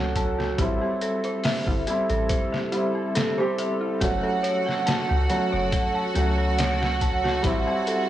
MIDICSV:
0, 0, Header, 1, 7, 480
1, 0, Start_track
1, 0, Tempo, 857143
1, 330, Time_signature, 4, 2, 24, 8
1, 4532, End_track
2, 0, Start_track
2, 0, Title_t, "String section"
2, 0, Program_c, 0, 48
2, 2248, Note_on_c, 0, 66, 75
2, 2249, Note_on_c, 0, 78, 76
2, 4532, Note_off_c, 0, 66, 0
2, 4532, Note_off_c, 0, 78, 0
2, 4532, End_track
3, 0, Start_track
3, 0, Title_t, "Synth bell"
3, 0, Program_c, 1, 98
3, 0, Control_c, 1, 64, 127
3, 0, Note_on_c, 1, 66, 66
3, 0, Note_on_c, 1, 69, 71
3, 0, Note_on_c, 1, 73, 97
3, 0, Note_on_c, 1, 78, 66
3, 0, Note_on_c, 1, 81, 67
3, 90, Note_off_c, 1, 81, 0
3, 90, Note_on_c, 1, 81, 72
3, 211, Note_off_c, 1, 81, 0
3, 216, Note_off_c, 1, 66, 0
3, 216, Note_on_c, 1, 66, 74
3, 318, Note_off_c, 1, 66, 0
3, 330, Note_on_c, 1, 64, 77
3, 336, Note_off_c, 1, 69, 0
3, 336, Control_c, 1, 64, 0
3, 337, Note_off_c, 1, 78, 0
3, 338, Note_off_c, 1, 73, 0
3, 444, Note_off_c, 1, 64, 0
3, 447, Control_c, 1, 64, 127
3, 457, Note_on_c, 1, 67, 72
3, 558, Note_off_c, 1, 67, 0
3, 570, Note_on_c, 1, 69, 68
3, 691, Note_off_c, 1, 69, 0
3, 698, Note_on_c, 1, 72, 70
3, 799, Note_off_c, 1, 72, 0
3, 810, Note_on_c, 1, 76, 93
3, 924, Note_off_c, 1, 76, 0
3, 937, Note_on_c, 1, 64, 73
3, 1001, Note_off_c, 1, 64, 0
3, 1047, Note_on_c, 1, 67, 67
3, 1169, Note_off_c, 1, 67, 0
3, 1174, Note_on_c, 1, 69, 73
3, 1277, Note_off_c, 1, 69, 0
3, 1285, Note_on_c, 1, 72, 73
3, 1402, Note_off_c, 1, 72, 0
3, 1413, Note_on_c, 1, 76, 64
3, 1517, Note_off_c, 1, 76, 0
3, 1524, Note_on_c, 1, 64, 69
3, 1641, Note_off_c, 1, 64, 0
3, 1651, Note_on_c, 1, 67, 69
3, 1755, Note_off_c, 1, 67, 0
3, 1765, Note_on_c, 1, 69, 96
3, 1882, Note_off_c, 1, 69, 0
3, 1892, Note_on_c, 1, 72, 70
3, 1959, Note_off_c, 1, 72, 0
3, 2007, Note_on_c, 1, 76, 65
3, 2129, Note_off_c, 1, 76, 0
3, 2132, Note_on_c, 1, 64, 73
3, 2236, Note_off_c, 1, 64, 0
3, 2242, Note_on_c, 1, 66, 74
3, 2257, Control_c, 1, 64, 0
3, 2360, Note_off_c, 1, 66, 0
3, 2365, Control_c, 1, 64, 127
3, 2370, Note_on_c, 1, 69, 69
3, 2475, Note_off_c, 1, 69, 0
3, 2481, Note_on_c, 1, 73, 72
3, 2606, Note_off_c, 1, 73, 0
3, 2610, Note_on_c, 1, 78, 73
3, 2715, Note_off_c, 1, 78, 0
3, 2724, Note_on_c, 1, 81, 98
3, 2841, Note_off_c, 1, 81, 0
3, 2851, Note_on_c, 1, 66, 73
3, 2918, Note_off_c, 1, 66, 0
3, 2967, Note_on_c, 1, 69, 70
3, 3089, Note_off_c, 1, 69, 0
3, 3094, Note_on_c, 1, 73, 75
3, 3197, Note_off_c, 1, 73, 0
3, 3206, Note_on_c, 1, 78, 74
3, 3322, Note_off_c, 1, 78, 0
3, 3332, Note_on_c, 1, 81, 69
3, 3436, Note_off_c, 1, 81, 0
3, 3446, Note_on_c, 1, 66, 72
3, 3562, Note_off_c, 1, 66, 0
3, 3573, Note_on_c, 1, 69, 73
3, 3676, Note_off_c, 1, 69, 0
3, 3687, Note_on_c, 1, 73, 94
3, 3803, Note_off_c, 1, 73, 0
3, 3817, Note_on_c, 1, 78, 72
3, 3881, Note_off_c, 1, 78, 0
3, 3930, Note_on_c, 1, 81, 72
3, 4050, Note_off_c, 1, 81, 0
3, 4056, Note_on_c, 1, 66, 77
3, 4158, Note_off_c, 1, 66, 0
3, 4170, Note_on_c, 1, 64, 84
3, 4177, Control_c, 1, 64, 0
3, 4263, Control_c, 1, 64, 127
3, 4284, Note_off_c, 1, 64, 0
3, 4294, Note_on_c, 1, 67, 74
3, 4397, Note_off_c, 1, 67, 0
3, 4408, Note_on_c, 1, 69, 68
3, 4530, Note_off_c, 1, 69, 0
3, 4532, End_track
4, 0, Start_track
4, 0, Title_t, "Synth drone"
4, 0, Program_c, 2, 95
4, 0, Note_on_c, 2, 69, 82
4, 4532, Note_off_c, 2, 69, 0
4, 4532, End_track
5, 0, Start_track
5, 0, Title_t, "Felt piano"
5, 0, Program_c, 3, 0
5, 0, Control_c, 3, 64, 127
5, 0, Note_on_c, 3, 54, 83
5, 0, Note_on_c, 3, 57, 76
5, 0, Note_on_c, 3, 61, 80
5, 0, Note_on_c, 3, 66, 93
5, 301, Note_off_c, 3, 54, 0
5, 304, Note_off_c, 3, 57, 0
5, 307, Note_off_c, 3, 61, 0
5, 310, Note_off_c, 3, 66, 0
5, 325, Note_on_c, 3, 55, 89
5, 335, Note_on_c, 3, 60, 83
5, 338, Control_c, 3, 64, 0
5, 340, Note_on_c, 3, 64, 102
5, 446, Control_c, 3, 64, 127
5, 1020, Note_off_c, 3, 55, 0
5, 1025, Note_off_c, 3, 60, 0
5, 1028, Note_off_c, 3, 64, 0
5, 1052, Note_on_c, 3, 55, 85
5, 1058, Note_on_c, 3, 60, 68
5, 1062, Note_on_c, 3, 64, 88
5, 1504, Note_off_c, 3, 55, 0
5, 1507, Note_off_c, 3, 60, 0
5, 1509, Note_off_c, 3, 64, 0
5, 1524, Note_on_c, 3, 55, 76
5, 1532, Note_on_c, 3, 60, 67
5, 1535, Note_on_c, 3, 64, 81
5, 1864, Note_off_c, 3, 55, 0
5, 1867, Note_off_c, 3, 60, 0
5, 1869, Note_off_c, 3, 64, 0
5, 1895, Note_on_c, 3, 55, 90
5, 1902, Note_on_c, 3, 60, 78
5, 1904, Note_on_c, 3, 67, 98
5, 2222, Note_off_c, 3, 55, 0
5, 2225, Note_off_c, 3, 60, 0
5, 2226, Note_off_c, 3, 67, 0
5, 2246, Note_on_c, 3, 54, 87
5, 2251, Note_on_c, 3, 57, 84
5, 2256, Note_on_c, 3, 61, 84
5, 2257, Control_c, 3, 64, 0
5, 2262, Note_on_c, 3, 66, 96
5, 2344, Control_c, 3, 64, 127
5, 2941, Note_off_c, 3, 54, 0
5, 2943, Note_off_c, 3, 57, 0
5, 2946, Note_off_c, 3, 61, 0
5, 2949, Note_off_c, 3, 66, 0
5, 2967, Note_on_c, 3, 54, 85
5, 2969, Note_on_c, 3, 57, 74
5, 2972, Note_on_c, 3, 61, 72
5, 2976, Note_on_c, 3, 66, 89
5, 3421, Note_off_c, 3, 54, 0
5, 3422, Note_off_c, 3, 57, 0
5, 3424, Note_off_c, 3, 61, 0
5, 3426, Note_off_c, 3, 66, 0
5, 3440, Note_on_c, 3, 54, 78
5, 3445, Note_on_c, 3, 57, 74
5, 3452, Note_on_c, 3, 61, 77
5, 3458, Note_on_c, 3, 66, 87
5, 4138, Note_off_c, 3, 54, 0
5, 4140, Note_off_c, 3, 57, 0
5, 4144, Note_off_c, 3, 61, 0
5, 4147, Note_off_c, 3, 66, 0
5, 4159, Note_on_c, 3, 55, 95
5, 4170, Note_on_c, 3, 60, 86
5, 4178, Control_c, 3, 64, 0
5, 4178, Note_on_c, 3, 64, 105
5, 4278, Control_c, 3, 64, 127
5, 4532, Note_off_c, 3, 55, 0
5, 4532, Note_off_c, 3, 60, 0
5, 4532, Note_off_c, 3, 64, 0
5, 4532, End_track
6, 0, Start_track
6, 0, Title_t, "808-style bass"
6, 0, Program_c, 4, 38
6, 0, Note_on_c, 4, 37, 71
6, 308, Note_off_c, 4, 37, 0
6, 329, Note_on_c, 4, 33, 100
6, 441, Note_off_c, 4, 33, 0
6, 934, Note_on_c, 4, 31, 100
6, 1035, Note_off_c, 4, 31, 0
6, 1174, Note_on_c, 4, 33, 99
6, 1275, Note_off_c, 4, 33, 0
6, 2248, Note_on_c, 4, 30, 103
6, 2360, Note_off_c, 4, 30, 0
6, 2859, Note_on_c, 4, 37, 99
6, 2957, Note_off_c, 4, 37, 0
6, 3097, Note_on_c, 4, 30, 97
6, 3196, Note_off_c, 4, 30, 0
6, 3448, Note_on_c, 4, 37, 76
6, 4147, Note_off_c, 4, 37, 0
6, 4169, Note_on_c, 4, 33, 100
6, 4281, Note_off_c, 4, 33, 0
6, 4532, End_track
7, 0, Start_track
7, 0, Title_t, "Drums"
7, 87, Note_on_c, 9, 36, 87
7, 87, Note_on_c, 9, 42, 64
7, 143, Note_off_c, 9, 36, 0
7, 143, Note_off_c, 9, 42, 0
7, 224, Note_on_c, 9, 38, 44
7, 280, Note_off_c, 9, 38, 0
7, 327, Note_on_c, 9, 36, 101
7, 327, Note_on_c, 9, 42, 80
7, 383, Note_off_c, 9, 36, 0
7, 383, Note_off_c, 9, 42, 0
7, 568, Note_on_c, 9, 42, 60
7, 624, Note_off_c, 9, 42, 0
7, 693, Note_on_c, 9, 42, 40
7, 749, Note_off_c, 9, 42, 0
7, 804, Note_on_c, 9, 46, 78
7, 813, Note_on_c, 9, 38, 113
7, 860, Note_off_c, 9, 46, 0
7, 869, Note_off_c, 9, 38, 0
7, 933, Note_on_c, 9, 36, 89
7, 989, Note_off_c, 9, 36, 0
7, 1048, Note_on_c, 9, 42, 66
7, 1104, Note_off_c, 9, 42, 0
7, 1173, Note_on_c, 9, 42, 38
7, 1229, Note_off_c, 9, 42, 0
7, 1284, Note_on_c, 9, 42, 82
7, 1286, Note_on_c, 9, 36, 103
7, 1340, Note_off_c, 9, 42, 0
7, 1342, Note_off_c, 9, 36, 0
7, 1421, Note_on_c, 9, 38, 47
7, 1477, Note_off_c, 9, 38, 0
7, 1525, Note_on_c, 9, 42, 57
7, 1581, Note_off_c, 9, 42, 0
7, 1766, Note_on_c, 9, 42, 84
7, 1774, Note_on_c, 9, 38, 105
7, 1822, Note_off_c, 9, 42, 0
7, 1830, Note_off_c, 9, 38, 0
7, 2007, Note_on_c, 9, 42, 64
7, 2063, Note_off_c, 9, 42, 0
7, 2246, Note_on_c, 9, 36, 99
7, 2247, Note_on_c, 9, 42, 87
7, 2302, Note_off_c, 9, 36, 0
7, 2303, Note_off_c, 9, 42, 0
7, 2487, Note_on_c, 9, 42, 62
7, 2543, Note_off_c, 9, 42, 0
7, 2624, Note_on_c, 9, 38, 38
7, 2680, Note_off_c, 9, 38, 0
7, 2726, Note_on_c, 9, 42, 80
7, 2734, Note_on_c, 9, 38, 110
7, 2782, Note_off_c, 9, 42, 0
7, 2790, Note_off_c, 9, 38, 0
7, 2966, Note_on_c, 9, 42, 67
7, 3022, Note_off_c, 9, 42, 0
7, 3205, Note_on_c, 9, 42, 86
7, 3207, Note_on_c, 9, 36, 103
7, 3261, Note_off_c, 9, 42, 0
7, 3263, Note_off_c, 9, 36, 0
7, 3446, Note_on_c, 9, 42, 61
7, 3502, Note_off_c, 9, 42, 0
7, 3688, Note_on_c, 9, 42, 85
7, 3696, Note_on_c, 9, 38, 113
7, 3744, Note_off_c, 9, 42, 0
7, 3752, Note_off_c, 9, 38, 0
7, 3824, Note_on_c, 9, 38, 56
7, 3880, Note_off_c, 9, 38, 0
7, 3927, Note_on_c, 9, 42, 64
7, 3928, Note_on_c, 9, 36, 86
7, 3983, Note_off_c, 9, 42, 0
7, 3984, Note_off_c, 9, 36, 0
7, 4061, Note_on_c, 9, 38, 42
7, 4117, Note_off_c, 9, 38, 0
7, 4165, Note_on_c, 9, 42, 90
7, 4167, Note_on_c, 9, 36, 101
7, 4221, Note_off_c, 9, 42, 0
7, 4223, Note_off_c, 9, 36, 0
7, 4407, Note_on_c, 9, 42, 65
7, 4463, Note_off_c, 9, 42, 0
7, 4532, End_track
0, 0, End_of_file